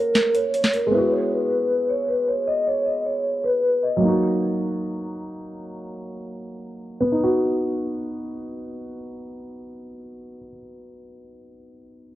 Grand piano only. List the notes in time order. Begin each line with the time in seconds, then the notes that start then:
Already playing: A#3 C#4 F#4
0.87 G#3 B3
0.94 E4 F#4
3.97 F#3 A#3
4.04 D#4 F#4
7.00 B3
7.12 D#4
7.23 F#4